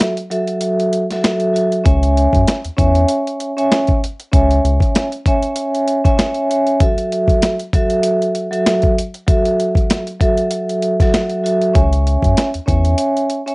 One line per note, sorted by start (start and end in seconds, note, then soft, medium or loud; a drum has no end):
0.00 0.10 E5 loud
0.00 snare loud
0.00 snare medium
0.00 closed hi-hat loud
0.17 closed hi-hat medium
0.30 1.03 F#3 medium
0.30 1.03 F#4 medium
0.30 1.03 A4 medium
0.30 1.03 E5 loud
0.30 closed hi-hat medium
0.47 closed hi-hat medium
0.61 closed hi-hat loud
0.80 closed hi-hat medium
0.93 closed hi-hat medium
1.10 1.21 F#3 loud
1.10 1.22 F#4 medium
1.10 1.22 A4 medium
1.10 1.22 E5 loud
1.10 snare soft
1.10 closed hi-hat medium
1.22 1.52 F#3 medium
1.22 1.52 F#4 medium
1.22 1.52 A4 medium
1.22 1.52 E5 medium
1.22 snare loud
1.22 snare medium
1.22 closed hi-hat medium
1.40 closed hi-hat soft
1.53 1.83 F#3 medium
1.53 1.83 F#4 medium
1.53 1.83 A4 medium
1.53 1.83 E5 medium
1.53 closed hi-hat medium
1.72 closed hi-hat medium
1.84 2.27 C#2 loud
1.84 2.57 C#4 medium
1.84 2.57 C#5 medium
1.84 2.57 E5 medium
1.84 2.57 G#5 loud
1.84 kick loud
1.84 closed hi-hat medium
2.03 closed hi-hat medium
2.17 closed hi-hat medium
2.33 2.45 F#2 medium
2.33 kick medium
2.33 closed hi-hat soft
2.47 snare loud
2.47 snare medium
2.47 closed hi-hat loud
2.64 2.70 E2 soft
2.64 closed hi-hat medium
2.77 3.05 E2 medium
2.77 3.50 C#4 medium
2.77 3.50 C#5 medium
2.77 3.50 E5 medium
2.77 3.50 G#5 loud
2.77 kick medium
2.77 closed hi-hat medium
2.95 closed hi-hat medium
3.08 closed hi-hat loud
3.27 closed hi-hat medium
3.40 closed hi-hat medium
3.57 3.98 C#4 medium
3.57 3.99 C#5 medium
3.57 3.99 E5 medium
3.57 3.99 G#5 loud
3.57 closed hi-hat medium
3.72 snare loud
3.72 snare medium
3.72 closed hi-hat medium
3.87 kick medium
3.87 closed hi-hat soft
4.04 closed hi-hat medium
4.20 closed hi-hat medium
4.32 4.60 C#2 loud
4.32 5.05 C#4 medium
4.32 5.05 C#5 medium
4.32 5.05 E5 medium
4.32 5.05 G#5 loud
4.32 kick loud
4.32 closed hi-hat medium
4.51 closed hi-hat medium
4.64 4.79 C#2 medium
4.64 closed hi-hat medium
4.80 kick medium
4.80 closed hi-hat soft
4.95 snare loud
4.95 snare medium
4.95 closed hi-hat loud
5.12 closed hi-hat medium
5.26 5.98 C#4 medium
5.26 5.99 C#5 medium
5.26 5.99 E5 medium
5.26 5.99 G#5 loud
5.26 kick medium
5.26 closed hi-hat medium
5.43 closed hi-hat medium
5.56 closed hi-hat loud
5.75 closed hi-hat medium
5.88 closed hi-hat medium
6.04 6.16 C#4 medium
6.04 6.16 C#5 medium
6.04 6.17 E5 medium
6.04 6.17 G#5 loud
6.04 kick loud
6.04 closed hi-hat medium
6.17 6.47 C#4 medium
6.17 6.47 C#5 medium
6.17 6.47 E5 medium
6.17 6.47 G#5 medium
6.17 snare loud
6.17 snare medium
6.17 closed hi-hat medium
6.34 closed hi-hat soft
6.50 6.78 C#4 medium
6.50 6.79 C#5 medium
6.50 6.79 E5 medium
6.50 6.79 G#5 medium
6.50 closed hi-hat medium
6.67 closed hi-hat medium
6.80 7.53 F#3 medium
6.80 7.53 F#4 medium
6.80 7.53 A4 medium
6.80 7.53 E5 loud
6.80 kick loud
6.80 closed hi-hat medium
6.98 closed hi-hat medium
7.12 closed hi-hat medium
7.28 kick medium
7.28 closed hi-hat soft
7.42 snare loud
7.42 snare medium
7.42 closed hi-hat loud
7.59 closed hi-hat medium
7.73 8.46 F#3 medium
7.73 8.46 F#4 medium
7.73 8.46 A4 medium
7.73 8.46 E5 loud
7.73 kick medium
7.73 closed hi-hat medium
7.90 closed hi-hat medium
8.03 closed hi-hat loud
8.22 closed hi-hat medium
8.35 closed hi-hat medium
8.51 8.93 F#3 medium
8.51 8.93 F#4 medium
8.51 8.93 A4 medium
8.51 8.94 E5 loud
8.51 closed hi-hat medium
8.66 snare loud
8.66 snare medium
8.66 closed hi-hat medium
8.82 kick medium
8.82 closed hi-hat soft
8.98 closed hi-hat medium
9.14 closed hi-hat soft
9.27 10.00 F#3 medium
9.27 10.00 F#4 medium
9.27 10.00 A4 medium
9.27 10.00 E5 loud
9.27 kick loud
9.27 closed hi-hat medium
9.46 closed hi-hat medium
9.60 closed hi-hat medium
9.75 kick medium
9.75 closed hi-hat soft
9.90 snare loud
9.90 snare medium
9.90 closed hi-hat loud
10.07 closed hi-hat medium
10.20 10.93 F#3 medium
10.20 10.93 F#4 medium
10.20 10.93 A4 medium
10.20 10.93 E5 loud
10.20 kick medium
10.20 closed hi-hat medium
10.37 closed hi-hat medium
10.51 closed hi-hat loud
10.69 closed hi-hat medium
10.82 closed hi-hat medium
11.00 11.11 F#3 loud
11.00 11.12 F#4 medium
11.00 11.12 A4 medium
11.00 11.12 E5 loud
11.00 kick loud
11.00 snare soft
11.00 closed hi-hat medium
11.12 11.42 F#3 medium
11.12 11.42 F#4 medium
11.12 11.42 A4 medium
11.12 11.42 E5 medium
11.12 snare loud
11.12 snare medium
11.12 closed hi-hat medium
11.29 closed hi-hat soft
11.43 11.72 F#3 medium
11.43 11.73 F#4 medium
11.43 11.73 A4 medium
11.43 11.73 E5 medium
11.43 closed hi-hat medium
11.62 closed hi-hat medium
11.74 12.17 C#2 loud
11.74 12.47 C#4 medium
11.74 12.47 C#5 medium
11.74 12.47 E5 medium
11.74 12.47 G#5 loud
11.74 kick loud
11.74 closed hi-hat medium
11.93 closed hi-hat medium
12.07 closed hi-hat medium
12.22 12.35 F#2 medium
12.22 kick medium
12.22 closed hi-hat medium
12.37 snare loud
12.37 snare medium
12.37 closed hi-hat loud
12.54 12.60 E2 soft
12.54 closed hi-hat medium
12.66 12.95 E2 medium
12.66 13.39 C#4 medium
12.66 13.40 C#5 medium
12.66 13.40 E5 medium
12.66 13.40 G#5 loud
12.66 kick medium
12.66 closed hi-hat medium
12.85 closed hi-hat medium
12.98 closed hi-hat loud
13.17 closed hi-hat medium
13.30 closed hi-hat medium
13.46 13.55 C#4 medium
13.46 13.55 C#5 medium
13.46 13.55 E5 medium
13.46 13.55 G#5 loud
13.46 closed hi-hat medium